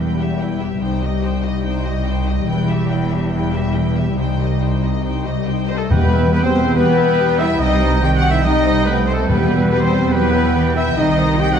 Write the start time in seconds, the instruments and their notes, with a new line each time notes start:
Already playing: double bass section E1, cello section E2, harp E3 G3 B3 G4, french horn section G3 B3, viola section E4, violin section B4
0.00 violin section G5
0.17 harp B3, viola section G4, violin section G4
0.21 violin section E5
0.39 viola section E4, harp G4, violin section B4 G5
0.59 harp B3, viola section G4, violin section G4 E5
0.80 double bass section C2, cello section C2, harp C3, french horn section D#4, viola section D#4, violin section C5 G5
1.01 harp G3, viola section G4, violin section D#5
1.22 viola section D#4, harp G4, violin section C5 G5
1.42 harp D#4, viola section G4, violin section D#5
1.63 harp C4, viola section D#4, violin section C5 G5
1.84 harp G3, viola section G4, violin section D#5
2.05 viola section D#4, harp G4, violin section C5 G5
2.26 harp D#4, viola section G4, violin section D#5
2.47 double bass section E1, cello section E2, harp E3, french horn section G3 E4, viola section E4, violin section B4 G5
2.69 harp E4, viola section G4, violin section G4 E5
2.90 viola section E4, harp G4, violin section B4 G5
3.10 harp E4, violin section G4 E5, viola section G4
3.30 harp G3, viola section E4, violin section B4 G5
3.53 harp E4, viola section G4, violin section G4 E5
3.73 viola section E4, harp G4, violin section B4 G5
3.95 harp E4, viola section G4, violin section G4 E5
4.17 double bass section C2, cello section C2, harp C3, viola section D#4, french horn section D#4, violin section C5 G5
4.39 harp G3, viola section G4, violin section D#5
4.60 viola section D#4, harp G4, violin section C5 G5
4.82 harp D#4, viola section G4, violin section D#5
5.03 harp C4, viola section D#4, violin section C5 G5
5.24 harp G3, viola section G4, violin section D#5
5.46 viola section D#4, harp G4, violin section C5 G5
5.68 french horn section C4, harp D#4, viola section G4, violin section C5 D#5, flute section C5, oboe C5
5.76 french horn section A3, violin section A4, flute section A4, oboe A4
5.90 timpani E2, double bass section E2, harp E3, trombone section G3 B3, french horn section B3, viola section G4 G5, oboe B4, flute section B4, violin section B4, trumpet G5
6.12 harp B2, viola section B4 E5
6.32 trombone section G3 B3, french horn section B3, viola section G4 G5, violin section B4, flute section B4, oboe B4, harp G5, trumpet G5
6.42 french horn section C4, violin section C5, oboe C5, flute section C5
6.54 harp B3, viola section B4 E5
6.75 cello section E3, trombone section G3 B3, french horn section B3, viola section G4 G5, violin section B4, flute section B4, oboe B4, trumpet G5
6.96 harp B3, viola section B4 E5
7.18 cello section G3, viola section G4 G5
7.38 harp B3, french horn section E4, viola section B4 E5, oboe E5, flute section E5, violin section E5
7.58 double bass section C2, harp C3, cello section G3, trombone section G3 C4, french horn section D#4, oboe D#5, viola section D#5 G5, flute section D#5, violin section D#5, trumpet G5
7.80 harp C4, viola section C5 D#5
8.01 cello section D#3, trombone section G3 C4, harp D#4, french horn section G4, viola section D#5 G5, oboe G5, flute section G5, violin section G5, trumpet G5
8.16 french horn section F#4, oboe F#5, flute section F#5, violin section F#5
8.23 harp C4, viola section C5 D#5
8.30 french horn section E4, flute section E5, oboe E5, violin section E5
8.43 trombone section G3 C4, cello section G3, french horn section D#4, flute section D#5, oboe D#5, viola section D#5 G5, violin section D#5, trumpet G5
8.64 harp C4, viola section C5 D#5
8.85 cello section A3, french horn section B3, oboe B4, violin section B4, flute section B4, viola section D#5 G5
9.06 harp C4, french horn section C4, oboe C5, violin section C5, viola section C5 D#5, flute section C5
9.13 french horn section A3, oboe A4, violin section A4, flute section A4
9.28 double bass section E2, timpani E2, harp E3, cello section G3, trombone section G3 B3, french horn section B3, viola section G4 G5, flute section B4, oboe B4, violin section B4, trumpet G5
9.49 harp B2, viola section B4 E5
9.70 trombone section G3 B3, french horn section B3, viola section G4 G5, oboe B4, flute section B4, violin section B4, trumpet G5
9.79 french horn section C4, oboe C5, flute section C5, violin section C5
9.84 violin section C5
9.92 harp B3, viola section B4 E5
10.12 trombone section E3 B3, cello section F#3, french horn section B3, viola section G4 G5, oboe B4, flute section B4, violin section B4, trumpet G5
10.16 violin section B4
10.33 harp B3, viola section B4 E5
10.54 cello section E3, viola section G4 G5, harp G4
10.74 harp B3, french horn section E4, viola section B4 E5, oboe E5, flute section E5, violin section E5
10.95 double bass section C2, harp C3, cello section D#3, trombone section G3 C4, french horn section D#4, viola section D#5 G5, violin section D#5, flute section D#5, oboe D#5, trumpet G5
11.18 harp C4, viola section C5 D#5
11.38 trombone section G3 C4, french horn section G4, viola section D#5 G5, flute section G5, oboe G5, violin section G5, trumpet G5, harp G5
11.52 french horn section F#4, oboe F#5, violin section F#5, flute section F#5